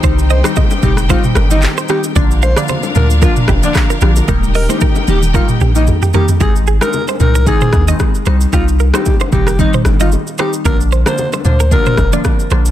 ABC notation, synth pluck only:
X:1
M:4/4
L:1/16
Q:"Swing 16ths" 1/4=113
K:Cm
V:1 name="Synth pluck"
[E,G,CE]3 [E,G,CE] z2 [E,G,CE] z [E,G,CE]3 [E,G,CE]3 [E,G,CE]2 | [D,F,B,D]3 [D,F,B,D] z2 [D,F,B,D] z [D,F,B,D]3 [D,F,B,D]3 [D,F,B,D]2 | [E,G,B,E]3 [E,G,B,E] z2 [E,G,B,E] z [E,G,B,E]3 [E,G,B,E]3 [E,G,B,E]2 | [E,A,CE]3 [E,A,CE] z2 [E,A,CE] z [E,A,CE]3 [E,A,CE]3 [E,G,CE]2 |
[E,G,CE]3 [E,G,CE] z2 [E,G,CE] z [E,G,CE]3 [E,G,CE]3 [E,G,CE]2 | [D,F,B,D]3 [D,F,B,D] z2 [D,F,B,D] z [D,F,B,D]3 [D,F,B,D]3 [D,F,B,D]2 |]